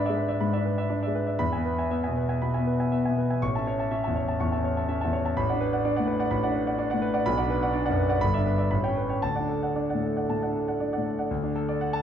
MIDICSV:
0, 0, Header, 1, 2, 480
1, 0, Start_track
1, 0, Tempo, 497925
1, 1349, Time_signature, 4, 2, 24, 8
1, 3770, Tempo, 478851
1, 8090, Tempo, 516796
1, 10490, Tempo, 497925
1, 11662, End_track
2, 0, Start_track
2, 0, Title_t, "Grand piano"
2, 0, Program_c, 0, 0
2, 0, Control_c, 0, 64, 127
2, 0, Note_on_c, 0, 44, 63
2, 0, Note_on_c, 0, 62, 53
2, 0, Note_on_c, 0, 71, 56
2, 0, Note_on_c, 0, 74, 57
2, 0, Note_on_c, 0, 76, 52
2, 0, Note_on_c, 0, 83, 81
2, 53, Note_off_c, 0, 74, 0
2, 53, Note_on_c, 0, 74, 50
2, 56, Note_off_c, 0, 76, 0
2, 56, Note_on_c, 0, 76, 52
2, 89, Note_on_c, 0, 56, 50
2, 154, Note_off_c, 0, 74, 0
2, 155, Note_off_c, 0, 76, 0
2, 160, Note_off_c, 0, 71, 0
2, 160, Note_on_c, 0, 71, 48
2, 182, Note_off_c, 0, 62, 0
2, 274, Note_on_c, 0, 74, 45
2, 275, Note_on_c, 0, 76, 50
2, 334, Note_off_c, 0, 56, 0
2, 347, Note_off_c, 0, 71, 0
2, 370, Note_off_c, 0, 44, 0
2, 381, Note_off_c, 0, 74, 0
2, 381, Note_off_c, 0, 76, 0
2, 389, Note_off_c, 0, 83, 0
2, 389, Note_on_c, 0, 44, 53
2, 389, Note_on_c, 0, 83, 53
2, 512, Note_on_c, 0, 74, 44
2, 514, Note_on_c, 0, 76, 48
2, 548, Note_on_c, 0, 62, 41
2, 581, Note_off_c, 0, 83, 0
2, 619, Note_off_c, 0, 74, 0
2, 620, Note_off_c, 0, 76, 0
2, 627, Note_on_c, 0, 71, 41
2, 750, Note_on_c, 0, 74, 41
2, 751, Note_on_c, 0, 76, 49
2, 803, Note_off_c, 0, 62, 0
2, 819, Note_off_c, 0, 71, 0
2, 849, Note_off_c, 0, 74, 0
2, 857, Note_off_c, 0, 76, 0
2, 864, Note_on_c, 0, 74, 44
2, 865, Note_on_c, 0, 62, 44
2, 974, Note_off_c, 0, 74, 0
2, 988, Note_on_c, 0, 74, 43
2, 991, Note_on_c, 0, 76, 48
2, 1030, Note_on_c, 0, 56, 40
2, 1096, Note_off_c, 0, 74, 0
2, 1097, Note_off_c, 0, 76, 0
2, 1108, Note_on_c, 0, 71, 46
2, 1121, Note_off_c, 0, 62, 0
2, 1220, Note_on_c, 0, 74, 38
2, 1224, Note_on_c, 0, 76, 39
2, 1285, Note_off_c, 0, 56, 0
2, 1301, Note_off_c, 0, 71, 0
2, 1317, Note_off_c, 0, 44, 0
2, 1333, Note_off_c, 0, 74, 0
2, 1335, Note_off_c, 0, 76, 0
2, 1339, Note_on_c, 0, 83, 66
2, 1340, Note_on_c, 0, 40, 52
2, 1366, Control_c, 0, 64, 0
2, 1467, Note_on_c, 0, 76, 40
2, 1471, Note_on_c, 0, 80, 43
2, 1510, Note_on_c, 0, 59, 41
2, 1532, Control_c, 0, 64, 127
2, 1538, Note_off_c, 0, 83, 0
2, 1578, Note_off_c, 0, 76, 0
2, 1580, Note_off_c, 0, 80, 0
2, 1594, Note_on_c, 0, 71, 42
2, 1720, Note_on_c, 0, 76, 42
2, 1721, Note_on_c, 0, 80, 39
2, 1770, Note_off_c, 0, 59, 0
2, 1788, Note_off_c, 0, 71, 0
2, 1826, Note_off_c, 0, 76, 0
2, 1828, Note_off_c, 0, 80, 0
2, 1839, Note_on_c, 0, 59, 43
2, 1841, Note_on_c, 0, 76, 50
2, 1946, Note_off_c, 0, 76, 0
2, 1960, Note_on_c, 0, 76, 39
2, 1964, Note_on_c, 0, 80, 42
2, 2002, Note_on_c, 0, 47, 39
2, 2069, Note_off_c, 0, 76, 0
2, 2071, Note_off_c, 0, 80, 0
2, 2086, Note_on_c, 0, 71, 41
2, 2098, Note_off_c, 0, 59, 0
2, 2202, Note_on_c, 0, 76, 38
2, 2208, Note_on_c, 0, 80, 43
2, 2261, Note_off_c, 0, 47, 0
2, 2279, Note_off_c, 0, 71, 0
2, 2290, Note_off_c, 0, 40, 0
2, 2312, Note_off_c, 0, 76, 0
2, 2315, Note_off_c, 0, 80, 0
2, 2330, Note_on_c, 0, 47, 39
2, 2330, Note_on_c, 0, 83, 44
2, 2448, Note_on_c, 0, 76, 34
2, 2450, Note_on_c, 0, 80, 41
2, 2495, Note_on_c, 0, 59, 37
2, 2522, Note_off_c, 0, 83, 0
2, 2557, Note_off_c, 0, 76, 0
2, 2558, Note_off_c, 0, 80, 0
2, 2573, Note_on_c, 0, 71, 37
2, 2588, Note_off_c, 0, 47, 0
2, 2694, Note_on_c, 0, 76, 34
2, 2698, Note_on_c, 0, 80, 38
2, 2751, Note_off_c, 0, 59, 0
2, 2765, Note_off_c, 0, 71, 0
2, 2799, Note_off_c, 0, 76, 0
2, 2804, Note_off_c, 0, 80, 0
2, 2813, Note_on_c, 0, 76, 44
2, 2815, Note_on_c, 0, 59, 38
2, 2926, Note_off_c, 0, 76, 0
2, 2941, Note_on_c, 0, 76, 37
2, 2945, Note_on_c, 0, 80, 39
2, 2981, Note_on_c, 0, 47, 39
2, 3047, Note_off_c, 0, 76, 0
2, 3049, Note_off_c, 0, 80, 0
2, 3065, Note_on_c, 0, 71, 41
2, 3072, Note_off_c, 0, 59, 0
2, 3180, Note_on_c, 0, 76, 36
2, 3186, Note_on_c, 0, 80, 37
2, 3236, Note_off_c, 0, 47, 0
2, 3254, Note_off_c, 0, 71, 0
2, 3287, Note_off_c, 0, 76, 0
2, 3290, Note_off_c, 0, 80, 0
2, 3299, Note_on_c, 0, 33, 52
2, 3299, Note_on_c, 0, 85, 60
2, 3311, Control_c, 0, 64, 0
2, 3422, Note_on_c, 0, 76, 41
2, 3426, Note_on_c, 0, 81, 43
2, 3460, Note_on_c, 0, 61, 41
2, 3487, Control_c, 0, 64, 127
2, 3489, Note_off_c, 0, 85, 0
2, 3527, Note_off_c, 0, 76, 0
2, 3529, Note_off_c, 0, 81, 0
2, 3540, Note_on_c, 0, 73, 49
2, 3656, Note_on_c, 0, 76, 39
2, 3660, Note_on_c, 0, 81, 42
2, 3711, Note_off_c, 0, 61, 0
2, 3727, Note_off_c, 0, 73, 0
2, 3755, Note_off_c, 0, 76, 0
2, 3763, Note_off_c, 0, 81, 0
2, 3770, Note_on_c, 0, 76, 48
2, 3771, Note_on_c, 0, 61, 46
2, 3880, Note_off_c, 0, 76, 0
2, 3895, Note_on_c, 0, 76, 45
2, 3898, Note_on_c, 0, 81, 43
2, 3935, Note_on_c, 0, 40, 44
2, 4003, Note_off_c, 0, 76, 0
2, 4005, Note_off_c, 0, 81, 0
2, 4012, Note_on_c, 0, 73, 41
2, 4031, Note_off_c, 0, 61, 0
2, 4138, Note_on_c, 0, 76, 37
2, 4144, Note_on_c, 0, 81, 42
2, 4193, Note_off_c, 0, 40, 0
2, 4207, Note_off_c, 0, 73, 0
2, 4229, Note_off_c, 0, 33, 0
2, 4246, Note_off_c, 0, 76, 0
2, 4250, Note_off_c, 0, 81, 0
2, 4261, Note_on_c, 0, 85, 46
2, 4263, Note_on_c, 0, 40, 44
2, 4379, Note_on_c, 0, 76, 38
2, 4384, Note_on_c, 0, 81, 38
2, 4425, Note_on_c, 0, 61, 36
2, 4453, Note_off_c, 0, 85, 0
2, 4488, Note_off_c, 0, 76, 0
2, 4491, Note_off_c, 0, 81, 0
2, 4504, Note_on_c, 0, 73, 41
2, 4519, Note_off_c, 0, 40, 0
2, 4628, Note_on_c, 0, 76, 44
2, 4631, Note_on_c, 0, 81, 40
2, 4680, Note_off_c, 0, 61, 0
2, 4695, Note_off_c, 0, 73, 0
2, 4731, Note_off_c, 0, 76, 0
2, 4735, Note_off_c, 0, 81, 0
2, 4746, Note_on_c, 0, 76, 44
2, 4748, Note_on_c, 0, 61, 41
2, 4858, Note_off_c, 0, 76, 0
2, 4872, Note_on_c, 0, 81, 44
2, 4873, Note_on_c, 0, 76, 43
2, 4908, Note_on_c, 0, 40, 43
2, 4976, Note_off_c, 0, 76, 0
2, 4976, Note_off_c, 0, 81, 0
2, 4989, Note_on_c, 0, 73, 46
2, 5002, Note_off_c, 0, 61, 0
2, 5114, Note_on_c, 0, 76, 42
2, 5115, Note_on_c, 0, 81, 44
2, 5162, Note_off_c, 0, 40, 0
2, 5179, Note_off_c, 0, 73, 0
2, 5218, Note_off_c, 0, 76, 0
2, 5219, Note_off_c, 0, 81, 0
2, 5227, Note_on_c, 0, 33, 56
2, 5231, Note_on_c, 0, 83, 67
2, 5242, Control_c, 0, 64, 0
2, 5351, Note_on_c, 0, 74, 47
2, 5358, Note_on_c, 0, 78, 47
2, 5392, Note_on_c, 0, 62, 45
2, 5421, Note_off_c, 0, 83, 0
2, 5429, Control_c, 0, 64, 127
2, 5457, Note_off_c, 0, 74, 0
2, 5460, Note_off_c, 0, 78, 0
2, 5468, Note_on_c, 0, 71, 56
2, 5592, Note_on_c, 0, 74, 45
2, 5595, Note_on_c, 0, 78, 49
2, 5645, Note_off_c, 0, 62, 0
2, 5658, Note_off_c, 0, 71, 0
2, 5696, Note_off_c, 0, 74, 0
2, 5698, Note_off_c, 0, 78, 0
2, 5713, Note_on_c, 0, 74, 53
2, 5714, Note_on_c, 0, 62, 50
2, 5812, Note_off_c, 0, 74, 0
2, 5827, Note_on_c, 0, 74, 54
2, 5832, Note_on_c, 0, 78, 52
2, 5860, Note_on_c, 0, 45, 49
2, 5931, Note_off_c, 0, 74, 0
2, 5934, Note_off_c, 0, 78, 0
2, 5934, Note_on_c, 0, 71, 50
2, 5961, Note_off_c, 0, 62, 0
2, 6059, Note_on_c, 0, 74, 50
2, 6064, Note_on_c, 0, 78, 53
2, 6112, Note_off_c, 0, 45, 0
2, 6125, Note_off_c, 0, 71, 0
2, 6149, Note_off_c, 0, 33, 0
2, 6164, Note_off_c, 0, 74, 0
2, 6167, Note_off_c, 0, 78, 0
2, 6172, Note_on_c, 0, 33, 55
2, 6173, Note_on_c, 0, 83, 58
2, 6297, Note_on_c, 0, 74, 46
2, 6300, Note_on_c, 0, 78, 52
2, 6333, Note_on_c, 0, 62, 45
2, 6363, Note_off_c, 0, 83, 0
2, 6402, Note_off_c, 0, 74, 0
2, 6403, Note_off_c, 0, 78, 0
2, 6413, Note_on_c, 0, 71, 46
2, 6534, Note_on_c, 0, 74, 48
2, 6537, Note_on_c, 0, 78, 51
2, 6586, Note_off_c, 0, 62, 0
2, 6603, Note_off_c, 0, 71, 0
2, 6638, Note_off_c, 0, 74, 0
2, 6642, Note_off_c, 0, 78, 0
2, 6649, Note_on_c, 0, 62, 52
2, 6653, Note_on_c, 0, 74, 53
2, 6751, Note_off_c, 0, 74, 0
2, 6766, Note_on_c, 0, 74, 56
2, 6774, Note_on_c, 0, 78, 57
2, 6805, Note_on_c, 0, 45, 52
2, 6876, Note_off_c, 0, 74, 0
2, 6880, Note_off_c, 0, 78, 0
2, 6885, Note_on_c, 0, 71, 57
2, 6906, Note_off_c, 0, 62, 0
2, 7005, Note_on_c, 0, 74, 54
2, 7008, Note_on_c, 0, 78, 53
2, 7064, Note_off_c, 0, 45, 0
2, 7080, Note_off_c, 0, 71, 0
2, 7100, Note_off_c, 0, 33, 0
2, 7115, Note_off_c, 0, 74, 0
2, 7117, Note_off_c, 0, 78, 0
2, 7124, Note_on_c, 0, 83, 82
2, 7125, Note_on_c, 0, 35, 65
2, 7148, Control_c, 0, 64, 0
2, 7243, Note_on_c, 0, 74, 52
2, 7247, Note_on_c, 0, 78, 55
2, 7291, Note_on_c, 0, 62, 49
2, 7319, Note_off_c, 0, 83, 0
2, 7332, Control_c, 0, 64, 127
2, 7354, Note_off_c, 0, 74, 0
2, 7356, Note_off_c, 0, 78, 0
2, 7368, Note_on_c, 0, 71, 62
2, 7491, Note_on_c, 0, 74, 49
2, 7495, Note_on_c, 0, 78, 55
2, 7545, Note_off_c, 0, 62, 0
2, 7560, Note_off_c, 0, 71, 0
2, 7587, Note_off_c, 0, 74, 0
2, 7600, Note_off_c, 0, 78, 0
2, 7601, Note_on_c, 0, 62, 53
2, 7602, Note_on_c, 0, 74, 59
2, 7708, Note_off_c, 0, 74, 0
2, 7723, Note_on_c, 0, 74, 53
2, 7725, Note_on_c, 0, 78, 56
2, 7763, Note_on_c, 0, 42, 53
2, 7833, Note_off_c, 0, 74, 0
2, 7834, Note_off_c, 0, 78, 0
2, 7843, Note_on_c, 0, 71, 52
2, 7860, Note_off_c, 0, 62, 0
2, 7962, Note_on_c, 0, 74, 50
2, 7966, Note_on_c, 0, 78, 58
2, 8022, Note_off_c, 0, 42, 0
2, 8039, Note_off_c, 0, 71, 0
2, 8058, Note_off_c, 0, 35, 0
2, 8074, Note_off_c, 0, 74, 0
2, 8076, Note_off_c, 0, 78, 0
2, 8080, Note_on_c, 0, 31, 66
2, 8080, Note_on_c, 0, 83, 77
2, 8107, Control_c, 0, 64, 0
2, 8198, Note_on_c, 0, 74, 44
2, 8200, Note_on_c, 0, 76, 51
2, 8237, Note_on_c, 0, 62, 45
2, 8268, Note_off_c, 0, 83, 0
2, 8278, Control_c, 0, 64, 127
2, 8304, Note_off_c, 0, 74, 0
2, 8305, Note_off_c, 0, 76, 0
2, 8315, Note_on_c, 0, 71, 47
2, 8423, Note_on_c, 0, 74, 40
2, 8430, Note_on_c, 0, 76, 44
2, 8485, Note_off_c, 0, 62, 0
2, 8501, Note_off_c, 0, 71, 0
2, 8532, Note_off_c, 0, 31, 0
2, 8533, Note_off_c, 0, 74, 0
2, 8537, Note_off_c, 0, 76, 0
2, 8542, Note_on_c, 0, 33, 53
2, 8542, Note_on_c, 0, 83, 59
2, 8569, Control_c, 0, 64, 0
2, 8659, Note_on_c, 0, 73, 40
2, 8663, Note_on_c, 0, 79, 50
2, 8701, Note_on_c, 0, 61, 40
2, 8725, Control_c, 0, 64, 127
2, 8735, Note_off_c, 0, 83, 0
2, 8770, Note_off_c, 0, 73, 0
2, 8772, Note_off_c, 0, 79, 0
2, 8784, Note_on_c, 0, 71, 44
2, 8902, Note_on_c, 0, 73, 38
2, 8904, Note_on_c, 0, 79, 38
2, 8961, Note_off_c, 0, 61, 0
2, 8979, Note_off_c, 0, 71, 0
2, 9011, Note_off_c, 0, 33, 0
2, 9014, Note_off_c, 0, 73, 0
2, 9015, Note_off_c, 0, 79, 0
2, 9021, Note_on_c, 0, 81, 63
2, 9023, Note_on_c, 0, 38, 47
2, 9047, Control_c, 0, 64, 0
2, 9142, Note_on_c, 0, 74, 37
2, 9146, Note_on_c, 0, 78, 38
2, 9187, Note_on_c, 0, 62, 37
2, 9216, Control_c, 0, 64, 127
2, 9221, Note_off_c, 0, 81, 0
2, 9257, Note_off_c, 0, 74, 0
2, 9259, Note_off_c, 0, 78, 0
2, 9267, Note_on_c, 0, 69, 40
2, 9395, Note_on_c, 0, 74, 35
2, 9397, Note_on_c, 0, 78, 41
2, 9453, Note_off_c, 0, 62, 0
2, 9468, Note_off_c, 0, 69, 0
2, 9504, Note_off_c, 0, 74, 0
2, 9508, Note_off_c, 0, 78, 0
2, 9517, Note_on_c, 0, 62, 39
2, 9518, Note_on_c, 0, 74, 41
2, 9633, Note_off_c, 0, 74, 0
2, 9647, Note_on_c, 0, 74, 36
2, 9651, Note_on_c, 0, 78, 40
2, 9691, Note_on_c, 0, 45, 37
2, 9756, Note_off_c, 0, 74, 0
2, 9758, Note_off_c, 0, 78, 0
2, 9771, Note_on_c, 0, 69, 33
2, 9781, Note_off_c, 0, 62, 0
2, 9895, Note_on_c, 0, 74, 35
2, 9898, Note_on_c, 0, 78, 36
2, 9949, Note_off_c, 0, 45, 0
2, 9964, Note_off_c, 0, 69, 0
2, 9978, Note_off_c, 0, 38, 0
2, 10002, Note_off_c, 0, 74, 0
2, 10003, Note_off_c, 0, 78, 0
2, 10015, Note_on_c, 0, 45, 36
2, 10017, Note_on_c, 0, 81, 43
2, 10138, Note_on_c, 0, 74, 31
2, 10141, Note_on_c, 0, 78, 36
2, 10177, Note_on_c, 0, 62, 34
2, 10207, Note_off_c, 0, 81, 0
2, 10243, Note_off_c, 0, 74, 0
2, 10245, Note_off_c, 0, 78, 0
2, 10258, Note_on_c, 0, 69, 32
2, 10270, Note_off_c, 0, 45, 0
2, 10372, Note_on_c, 0, 74, 35
2, 10377, Note_on_c, 0, 78, 36
2, 10430, Note_off_c, 0, 62, 0
2, 10446, Note_off_c, 0, 69, 0
2, 10474, Note_off_c, 0, 74, 0
2, 10482, Note_off_c, 0, 78, 0
2, 10488, Note_on_c, 0, 62, 33
2, 10488, Note_on_c, 0, 74, 37
2, 10595, Note_off_c, 0, 74, 0
2, 10609, Note_on_c, 0, 74, 36
2, 10615, Note_on_c, 0, 78, 37
2, 10652, Note_on_c, 0, 45, 33
2, 10723, Note_off_c, 0, 74, 0
2, 10726, Note_off_c, 0, 78, 0
2, 10737, Note_on_c, 0, 69, 34
2, 10754, Note_off_c, 0, 62, 0
2, 10859, Note_on_c, 0, 74, 32
2, 10860, Note_on_c, 0, 78, 35
2, 10916, Note_off_c, 0, 45, 0
2, 10933, Note_off_c, 0, 69, 0
2, 10968, Note_off_c, 0, 74, 0
2, 10968, Note_off_c, 0, 78, 0
2, 10974, Note_on_c, 0, 38, 54
2, 11000, Control_c, 0, 64, 0
2, 11095, Note_on_c, 0, 62, 43
2, 11169, Control_c, 0, 64, 127
2, 11214, Note_on_c, 0, 69, 52
2, 11287, Note_off_c, 0, 62, 0
2, 11340, Note_on_c, 0, 74, 50
2, 11406, Note_off_c, 0, 69, 0
2, 11459, Note_on_c, 0, 78, 51
2, 11527, Note_off_c, 0, 74, 0
2, 11578, Note_on_c, 0, 81, 69
2, 11645, Note_off_c, 0, 78, 0
2, 11662, Note_off_c, 0, 38, 0
2, 11662, Note_off_c, 0, 81, 0
2, 11662, End_track
0, 0, End_of_file